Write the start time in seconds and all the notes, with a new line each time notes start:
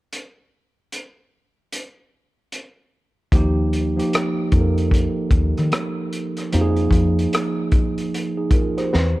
0.13 closed hi-hat
0.92 closed hi-hat
1.72 closed hi-hat
2.52 closed hi-hat
3.32 D#2 F3 A#3 D#4 G4, kick, closed hi-hat
3.73 closed hi-hat
3.97 F3 A#3 D#4 G4, closed hi-hat
4.13 cross-stick, closed hi-hat
4.52 F2 F3 A#3 D#4 A4, kick, closed hi-hat
4.61 A#4
4.78 closed hi-hat
4.91 kick, closed hi-hat
5.31 D#2, kick, closed hi-hat
5.57 D#3, cross-stick, closed hi-hat
5.72 cross-stick, closed hi-hat
6.13 closed hi-hat
6.37 cross-stick, closed hi-hat
6.52 F2 F3 A#3 D#4 G4, closed hi-hat
6.61 G#4
6.76 closed hi-hat
6.91 F2, kick, closed hi-hat
7.19 closed hi-hat
7.33 cross-stick, closed hi-hat
7.72 kick, closed hi-hat
7.98 closed hi-hat
8.14 closed hi-hat
8.37 D#4 G#4
8.51 F4 A#4, kick, closed hi-hat
8.78 G4 C5, cross-stick, closed hi-hat
8.93 E2 B4, snare